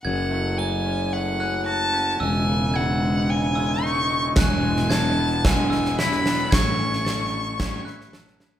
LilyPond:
<<
  \new Staff \with { instrumentName = "Glockenspiel" } { \time 4/4 \key fis \dorian \tempo 4 = 111 gis'''4 a''''4 r8 fis'''4 r8 | e'''4 gis'''4 r8 e'''4 r8 | fis'''4 gis'''4 r8 e'''4 r8 | gis'''4 a'''4 r8 fis'''4 r8 | }
  \new Staff \with { instrumentName = "Violin" } { \time 4/4 \key fis \dorian fis''4 gis''4 fis''4 a''4 | gis''4 fis''4 gis''4 cis'''8. r16 | gis''4 a''4 gis''4 b''4 | cis'''2. r4 | }
  \new Staff \with { instrumentName = "Clean electric guitar" } { \time 4/4 \key fis \dorian fis,8 a8 fis8 cis'8 a8 cis'8 fis'8 cis'8 | cis,8 cis8 gis,8 gis8 cis8 gis8 dis'8 gis8 | e,8 gis8 e8 b8 gis8 b8 e'8 b8 | a,8 cis'8 a8 e'8 cis'8 e'8 a'8 e'8 | }
  \new Staff \with { instrumentName = "Fingered electric bass" } { \clef bass \time 4/4 \key fis \dorian fis,,1 | e,,1 | e,,1 | a,,1 | }
  \new DrumStaff \with { instrumentName = "Drums" } \drummode { \time 4/4 r4 r4 r4 r4 | r4 r4 r4 r4 | <bd sn>8. sn16 sn4 <bd sn>8 sn16 sn16 sn16 sn16 sn8 | <bd sn>8. sn16 sn4 <bd sn>8 sn16 sn16 sn16 sn16 sn8 | }
>>